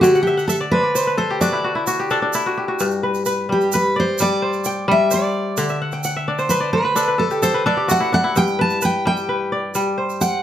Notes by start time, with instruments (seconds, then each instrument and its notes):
Already playing: kora C5
0.01 kora D3 G5, steel-string acoustic guitar F#4, shaker
0.15 kora F#5, shaker
0.23 steel-string acoustic guitar G4
0.27 kora E5, shaker
0.37 kora F#5, shaker
0.48 steel-string acoustic guitar A4, kora E5, shaker
0.61 kora D5
0.71 kora D4 C5, steel-string acoustic guitar B4
0.83 kora D5
0.95 kora C5, shaker
1.07 kora B4
1.18 kora A4, steel-string acoustic guitar C5
1.30 kora G4
1.41 kora D4 F#4, steel-string acoustic guitar D5, shaker
1.53 kora E4
1.64 kora F#4
1.75 kora E4
1.87 kora F#4, shaker
2.00 kora G4
2.10 kora D4 A4, shaker
2.22 kora D4
2.33 kora E4, shaker
2.46 kora F#4
2.57 kora G4
2.68 kora F#4
2.79 kora G2, shaker
2.91 shaker
3.03 kora B4
3.14 shaker
3.26 kora B4, shaker
3.49 kora G3, steel-string acoustic guitar G4
3.61 shaker
3.72 kora B4, steel-string acoustic guitar B4, shaker
3.96 steel-string acoustic guitar C5, kora D5
4.18 kora G3, steel-string acoustic guitar D5, shaker
4.42 kora C5
4.53 shaker
4.64 kora G5, shaker
4.88 kora G3, steel-string acoustic guitar E5
5.11 kora C5, steel-string acoustic guitar D5, shaker
5.57 kora D3, shaker
5.69 kora E5, shaker
5.82 kora F#5
5.92 kora G5, shaker
6.04 kora F#5, shaker
6.16 kora E5
6.28 kora D4 D5
6.39 kora C5, shaker
6.49 kora B4, steel-string acoustic guitar C5, shaker
6.60 kora D5
6.73 steel-string acoustic guitar B4, kora C5
6.85 kora B4
6.96 kora D4 A4, shaker
7.08 kora B4
7.18 kora A4, steel-string acoustic guitar A4
7.31 kora G4, shaker
7.42 kora A4, steel-string acoustic guitar C5, shaker
7.54 kora B4
7.66 kora D4 A4, steel-string acoustic guitar D5
7.77 kora G4
7.88 kora F#4, steel-string acoustic guitar F#5, shaker
8.00 kora E4
8.12 kora D4, steel-string acoustic guitar F#5, shaker
8.24 kora E4
8.36 kora G2, steel-string acoustic guitar G5, shaker
8.47 shaker
8.59 kora B4, steel-string acoustic guitar A5
8.70 shaker
8.82 kora B4, steel-string acoustic guitar G5, shaker
9.05 kora G3, steel-string acoustic guitar G5
9.17 shaker
9.29 kora B4
9.52 kora D5
9.75 kora G3, shaker
9.98 kora C5
10.10 shaker
10.21 steel-string acoustic guitar F#5, kora G5, shaker